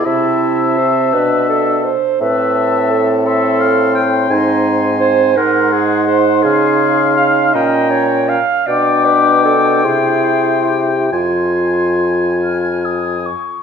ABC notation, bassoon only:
X:1
M:6/8
L:1/8
Q:3/8=55
K:Am
V:1 name="Bassoon" clef=bass
C,3 B,,2 z | A,,6 | [K:Fm] A,,3 A,,3 | D,3 B,,2 z |
=B,,3 C,3 | F,,4- F,, z |]